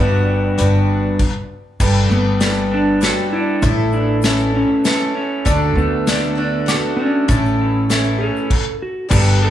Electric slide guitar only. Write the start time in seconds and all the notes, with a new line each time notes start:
Already playing: D5
2.11 B3
2.74 D4
3.04 F#4
3.33 E4
3.93 D4
4.24 C#4
4.56 C#4
5.77 B3
6.97 C#4
8.18 A4
8.82 F#4
9.11 G4
9.45 A4